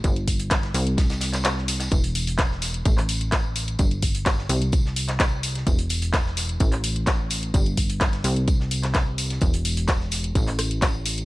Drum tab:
HH |xxoxxxoxxxoxx-ox|xxoxx-oxxxoxx-ox|xxoxx-oxx-oxx-ox|xxoxx-oxxxoxx-ox|
TB |x-x-x-x-xxxxx-xx|x-x-x-x-x-x-x-x-|x-x-x-x-x-x-x-x-|x-x-x-x-x-x-x-x-|
CP |----x------xx---|----x----x--x---|----x------xx---|----x----x--x---|
SD |----oo--oooooooo|----ooo-----o---|----oo---o-oo--o|----ooo-----o---|
BD |o-o-o---o-------|o---o---o---o---|o-o-o---o---o---|o---o---o---o---|

HH |xxoxxxoxx-oxx-ox|xxoxx-oxxxoxx-ox|
TB |x-x-x-x-x-x-x-x-|x-x-x-x-x-x-x-x-|
CP |----x------xx---|----x----x--x---|
SD |----oo---o-oo--o|----ooo---r-o---|
BD |o-o-o---o---o---|o---o---o---o---|